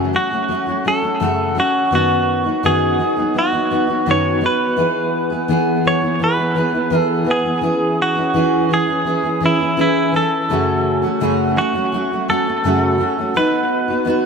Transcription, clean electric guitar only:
0.16 F#4
0.88 A4
1.60 F#4
1.95 F#4
2.66 G#4
3.39 F#4
4.11 C#5
4.46 B4
5.88 C#5
6.24 B4
7.00 A4
7.31 G#4
8.02 F#4
8.74 G#4
9.46 E4
9.81 E4
10.16 A4
11.58 F#4
12.30 A4
13.37 B4

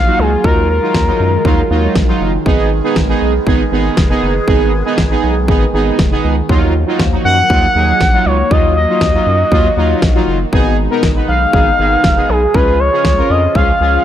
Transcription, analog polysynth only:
0.06 F#3 D#4 F#4
0.44 F#3 D#4 F4
0.82 F#3 D#4 F4
1.07 F#3 D#4 F4
1.45 F#3 D#4 F4
1.70 F#3 D#4 F4
2.08 F#3 D#4 F4
2.46 B3 D#4 G#4
2.84 B3 D#4 G#4
3.09 B3 D#4 G#4
3.47 B3 D#4 G#4
3.72 B3 D#4 G#4
4.10 B3 D#4 G#4
4.48 B3 D#4 G#4
4.85 B3 D#4 G#4
5.11 B3 D#4 G#4
5.48 B3 D#4 G#4
5.74 B3 D#4 G#4
6.11 B3 D#4 G#4
6.49 F#3 D#4 F4
6.87 F#3 D#4 F4
7.12 F#3 D#4 F#4
7.50 F#3 D#4 F4
7.75 F#3 D#4 G#4
8.13 F#3 D#4 F4
8.51 F#3 D#4 F4
8.89 F#3 D#4 F4
9.14 F#3 D#4 F4
9.52 F#3 D#4 F4
9.77 F#3 D#4 F4
10.15 F#3 D#4 F4
10.53 B3 D#4 G#4
10.90 B3 D#4 A#4
11.16 B3 D#4 B4
11.54 B3 D#4 G#4
11.79 B3 D#4 G#4
12.17 B3 D#4 G#4
12.54 C#4 F4 G#4
12.92 C#4 F4 G#4
13.18 C#4 F4 A#4
13.55 C#4 F4 G#4
13.81 C#4 F4 G#4

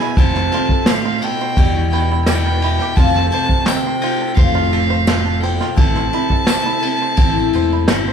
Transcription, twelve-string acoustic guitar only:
Already playing: E4 G#4 B4
0.17 F3 A3 C4 A4 C5
0.52 C4 A4 C5
0.86 A3 C4 A4 C5
1.22 A4 C5
1.56 E3 G3 E4 G4 B4
2.26 G3 E4 G4 B4
2.60 E4 G4 B4
2.96 F3 A3 C4 F4 A4
3.31 C4 F4 A4
3.65 A3 C4 F4 A4
4.35 F3 A3 C4 F4 A4
5.05 A3 C4 F4 A4
5.40 F4 A4
5.75 A2 E3 A3 C4 E4 A4
6.10 A3 C4 E4 A4
6.45 A3 C4 E4 A4
6.80 A3 C4 E4 A4
7.16 A2 E3 A3 C4 E4 A4
7.87 A3 C4 E4 A4

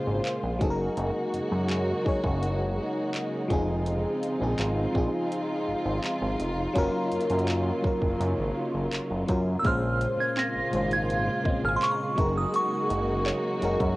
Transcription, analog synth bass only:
0.07 G#1
0.43 A#1
0.61 F#1
0.97 F#1
1.34 F#2
1.52 F#2
2.06 F#1
2.24 F#1
3.50 F1
4.41 A#1
4.59 G#1
4.95 A#1
5.67 G#1
5.85 G#1
6.22 G#1
6.40 F1
6.76 F#1
7.12 F#2
7.30 F#2
7.84 F#1
8.02 F#1
8.20 F#2
8.39 G#1
8.75 F#1
8.93 F#1
9.11 F#1
9.29 F#2
9.65 A#1
10.55 G#1
10.73 G#1
11.45 G#1
11.64 G#1
12.18 F#1
12.90 F#1
13.63 F#1
13.80 F#2

